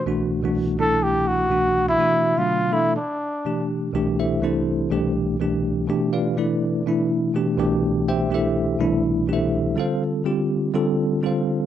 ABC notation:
X:1
M:4/4
L:1/16
Q:"Swing 16ths" 1/4=123
K:G
V:1 name="Trumpet"
z6 A2 G2 F4- F E- | E3 =F3 E2 D6 z2 | [K:C] z16 | z16 |
z16 | z16 |]
V:2 name="Tine electric piano"
z16 | z16 | [K:C] z2 [EAce]2 [CGAc]6 z6 | z2 [FBdf]2 [ABd]6 z6 |
z2 [Gceg]2 [EAce]6 z2 [EAce]4 | [cf]2 z8 z2 [FAcf]4 |]
V:3 name="Tine electric piano"
[C,,B,,E,A,DF]3 [C,,B,,E,A,DF]3 [C,,B,,E,A,DE]4- [C,,B,,E,A,DE] z [C,,B,,E,A,DF]4 | [B,,E,A,DF]3 [B,,D,F,A,D]3 [B,,E,A,DA]2 z4 [B,,E,A,DG]4 | [K:C] [C,,B,,E,A,DG]4 [C,,C,E,A,DE]4 [C,,B,,E,A,DG]4 [C,,B,,E,A,DG]4 | [B,,E,A,DG]4 [B,,E,A,DE]4 [B,,E,A,DE]4 [B,,E,A,DG]2 [C,,B,,E,A,DG]2- |
[C,,B,,E,A,DG]3 z [C,,B,,E,A,DG]4 [C,,B,,E,A,DE]4 [C,,B,,E,A,DG]4 | [D,G,CFA]4 [D,G,CFG]4 [D,G,CFA]4 [D,G,CFA]4 |]